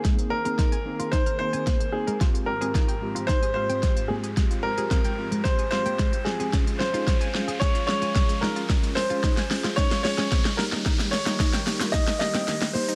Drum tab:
HH |xx-xxx-xxx-xxx-x|xx-xxx-xxx-xxx-x|xx-xxx-xxx-xxx-x|xx-xxx-xxx-xxx-x|
SH |----------------|----------------|----------------|----------------|
SD |o---o---o---o---|o---o---o---o---|o---o---o-o-o-o-|o-o-o-o-o-o-o-o-|
BD |o---o---o---o---|o---o---o---o---|o---o---o---o---|o---o---o---o---|

HH |xxoxxxoxxxoxxxox|xxoxxxoxxxoxxxox|
SH |----------------|xxxxxxxxxxxxxxxx|
SD |o-o-oooooooooooo|oooooooooooooo--|
BD |o---o---o---o---|o---o---o-------|